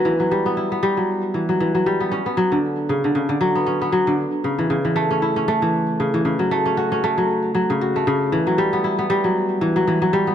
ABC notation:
X:1
M:4/4
L:1/16
Q:"Swing 16ths" 1/4=116
K:Edor
V:1 name="Kora" clef=bass
E, F, G, B, E B, G, F,3 E, F, E, F, G, B, | C B, F, D,3 C, D, C, D, F, B, C B, F, D, | z2 C, E, C, E, A, C E C A, E,3 C, E, | C, F, A, C F C A, F,3 F, C, F A, C, z |
E, F, G, B, E B, G, F,3 E, F, E, F, G, B, |]